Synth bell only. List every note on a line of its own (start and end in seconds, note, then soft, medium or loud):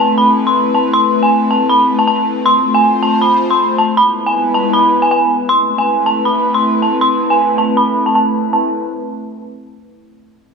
0.00 0.14 A5 medium
0.18 0.45 B5 medium
0.47 0.73 C6 medium
0.75 0.89 A5 medium
0.93 1.21 C6 loud
1.23 1.49 G#5 medium
1.51 1.66 A5 medium
1.69 1.97 B5 medium
1.99 2.06 A5 medium
2.08 2.22 A5 medium
2.46 2.73 C6 loud
2.75 3.01 G#5 medium
3.03 3.17 A5 medium
3.22 3.49 B5 medium
3.50 3.77 C6 medium
3.78 3.93 A5 medium
3.97 4.25 B5 loud
4.26 4.53 G#5 medium
4.54 4.69 A5 medium
4.73 5.01 B5 medium
5.02 5.09 G#5 medium
5.11 5.26 G#5 medium
5.49 5.76 C6 loud
5.78 6.05 G#5 medium
6.06 6.21 A5 medium
6.25 6.53 B5 medium
6.54 6.81 C6 medium
6.82 6.97 A5 medium
7.01 7.29 C6 loud
7.30 7.56 G#5 medium
7.58 7.73 A5 medium
7.77 8.04 B5 medium
8.06 8.13 A5 medium
8.15 8.30 A5 medium
8.53 8.71 A5 medium